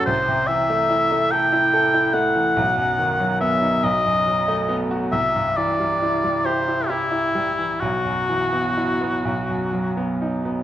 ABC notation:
X:1
M:6/8
L:1/16
Q:3/8=46
K:Bphr
V:1 name="Oboe"
c2 e4 g4 f2- | f4 e2 ^d4 z2 | e2 d4 c2 E4 | F8- F2 z2 |]
V:2 name="Grand piano" clef=bass
C,, C, E, A, E A, A E A E A, E, | B,,, F,, ^D, F, B, ^D B,,, F,, F, A, B, F | C,, G,, E, G, E G, G E G E G, E, | B,,, F,, E, B, E B, B,,, F,, F, B, ^D B, |]